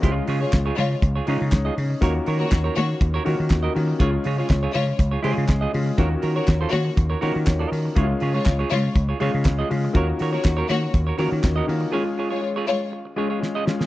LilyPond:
<<
  \new Staff \with { instrumentName = "Clean electric guitar" } { \time 4/4 \key des \mixolydian \tempo 4 = 121 <f' aes' des''>8 <f' aes' des''>16 <f' aes' des''>16 r16 <f' aes' des''>16 r8. <f' aes' des''>16 <f' aes' des''>16 r8 <f' aes' ees''>16 r8 | <ges' bes' des''>16 r16 <ges' bes' des''>16 <ges' bes' des''>16 r16 <ges' bes' des''>16 r8. <ges' bes' des''>16 <ges' bes' des''>16 r8 <ges' bes' ees''>16 r8 | <f' aes' des''>16 r16 <f' aes' des''>16 <f' aes' des''>16 r16 <f' aes' des''>16 r8. <f' aes' des''>16 <f' aes' des''>8 r16 <f' aes' ees''>16 r8 | <ges' bes' des''>16 r16 <ges' bes' des''>16 <ges' bes' des''>16 r16 <ges' bes' des''>8 r8 <ges' bes' des''>16 <ges' bes' des''>16 r8 <ges' bes' ees''>8 r16 |
<f' aes' des''>16 r16 <f' aes' des''>16 <f' aes' des''>16 r16 <f' aes' des''>16 r8. <f' aes' des''>16 <f' aes' des''>16 r8 <f' aes' ees''>16 r8 | <ges' bes' des''>16 r16 <ges' bes' des''>16 <ges' bes' des''>16 r16 <ges' bes' des''>16 r8. <ges' bes' des''>16 <ges' bes' des''>16 r8 <ges' bes' ees''>16 r8 | <f' aes' des''>16 r16 <f' aes' des''>16 <f' aes' des''>16 r16 <f' aes' des''>16 r4 <f' aes' des''>16 <f' aes' des''>16 r16 <f' aes' ees''>16 r8 | }
  \new Staff \with { instrumentName = "String section" } { \time 4/4 \key des \mixolydian r8. <aes f' des''>16 r8 <aes f' des''>8 r2 | r8. <bes ges' des''>16 r8 <bes ges' des''>8 r2 | r8. <aes f' des''>16 r8 <aes f' des''>8 r2 | r8. <bes ges' des''>16 r8 <bes ges' des''>8 r2 |
r8. <aes f' des''>16 r8 <aes f' des''>8 r2 | r8. <bes ges' des''>16 r8 <bes ges' des''>8 r2 | r8. <aes f' des''>16 r8 <aes f' des''>8 r2 | }
  \new Staff \with { instrumentName = "Grand piano" } { \time 4/4 \key des \mixolydian << { r2. des''8 des'8~ | des'8 r2. r8 | r1 | r2. des''8 bes'8~ |
bes'8 r2. r8 | r1 | r1 | } \\ { <aes des' f'>4.~ <aes des' f'>16 r8. <aes des' ees'>4 r8 | <ees bes des' f' ges'>4.~ <ees bes des' f' ges'>16 r8. <ees bes des' f' ges'>4 <ees bes des' f' ges'>8 | <aes des' f'>4.~ <aes des' f'>16 r8. <aes des' aes'>4 <aes des' f'>8 | <ees bes des' f' ges'>4.~ <ees bes des' f' ges'>16 r8. <ees bes des' f' ges'>4 r8 |
<aes des' fes' f'>4.~ <aes des' fes' f'>16 r8. <aes des' f'>4 <aes des' f'>8 | <ees bes des' f' ges'>4.~ <ees bes des' f' ges'>16 r8. <ees bes des' f' ges'>4 <ees bes des' f' ges'>8 | <aes des' f'>4.~ <aes des' f'>16 r8. <aes des' f'>4 <aes des' f'>8 | } >> }
  \new Staff \with { instrumentName = "Slap bass" } { \clef bass \time 4/4 \key des \mixolydian des,8 des8 des,8 des8 des,8 des16 des16 des,8 des8 | ees,8 ees8 ees,8 ees8 ees,8 ees16 ees16 ees,8 ees8 | des,8 des8 des,8 des8 des,8 des16 des16 des,8 des8 | ees,8 ees8 ees,8 ees8 ees,8 ees16 ees16 ees,8 ees8 |
des,8 des8 des,8 des8 des,8 des16 des16 des,8 des8 | ees,8 ees8 ees,8 ees8 ees,8 ees16 ees16 ees,8 ees8 | r1 | }
  \new DrumStaff \with { instrumentName = "Drums" } \drummode { \time 4/4 <hh bd>8 hho8 <hc hh bd sn>8 hho8 <hh bd>8 hho8 <hc hh bd sn>8 hho8 | <hh bd>8 hho8 <hc hh bd sn>8 hho8 <hh bd>8 hho8 <hc hh bd sn>8 hho8 | <hh bd>8 hho8 <hc hh bd sn>8 hho8 <hh bd>8 hho8 <hc hh bd sn>8 hho8 | <hh bd>8 hho8 <hc hh bd sn>8 hho8 <hh bd>8 hho8 <hc hh bd sn>8 hho8 |
<hh bd>8 hho8 <hc hh bd sn>8 hho8 <hh bd>8 hho8 <hc hh bd sn>8 hho8 | <hh bd>8 hho8 <hc hh bd sn>8 hho8 <hh bd>8 hho8 <hc hh bd sn>8 hho8 | r4 r4 r4 sn8 sn16 sn16 | }
>>